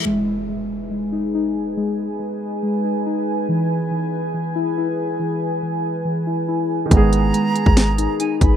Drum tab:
HH |----------------|----------------|----------------|----------------|
SD |----------------|----------------|----------------|----------------|
BD |----------------|----------------|----------------|----------------|

HH |x-x-x-x-x-x-x-x-|
SD |--------o-------|
BD |o------o------o-|